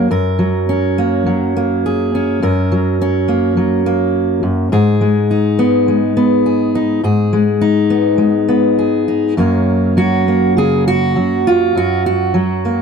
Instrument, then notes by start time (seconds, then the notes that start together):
steel-string acoustic guitar
Already playing: C#4 F#4
0.11 F#2 A#4
0.39 F#3
0.69 C#4
0.98 A#3
1.26 F#3
1.57 A#3
1.86 G#4
2.15 C#4
2.42 F#2 A#4
2.72 F#3
3.01 C#4
3.28 A#3
3.57 F#3
3.86 A#3
4.43 F#2
4.72 G#2 G#4
5.01 G#3
5.31 D#4
5.59 B3
5.88 G#3
6.17 B3
6.46 G#4
6.75 D#4
7.04 G#2 G#4
7.33 G#3
7.61 D#4
7.90 B3
8.18 G#3
8.49 B3
8.79 G#4
9.08 D#4
9.37 F#2 F#3 A#3 C#4 A#4
9.97 F#3 F#4
10.28 A#3
10.57 C#3 G#4
10.88 F#4
11.16 F#3
11.47 F4
11.75 F#2 F#4
12.06 F#4
12.34 F#3
12.65 A#3